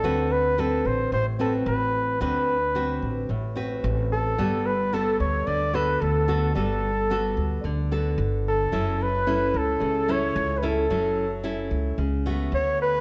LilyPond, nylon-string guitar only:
\new Staff \with { instrumentName = "Nylon-string guitar" } { \time 4/4 \key fis \phrygian \tempo 4 = 110 << { <c' fis' b'>4 <c' fis' b'>4 r8 <c' fis' b'>4. | <c' fis' b'>8 r8 <c' fis' b'>4 r8 <c' fis' b'>4. | <b fis' a'>8 r8 <b fis' a'>4. <b fis' a'>4 <b fis' a'>8 | <b fis' a'>8 r8 <b fis' a'>4 r8 <b fis' a'>4. |
<cis' e' a'>8 r8 <cis' e' a'>4 r8 <cis' e' a'>4 <cis' e' a'>8 | <cis' e' a'>8 r8 <cis' e' a'>4 r8 <a b fis'>4. | } \\ { d2 a,2 | d2 a,2 | g2 d2 | g2 d2 |
fis2 cis2 | fis2 cis4 r4 | } >> }